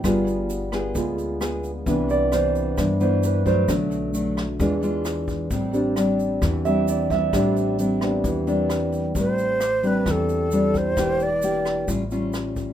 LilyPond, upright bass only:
\new Staff \with { instrumentName = "Upright bass" } { \clef bass \time 4/4 \key a \minor \tempo 4 = 132 g,,2 d,2 | c,2 g,2 | b,,2 e,2 | a,,2 e,2 |
a,,2 e,2 | a,,2 e,2 | e,,2 a,,2 | }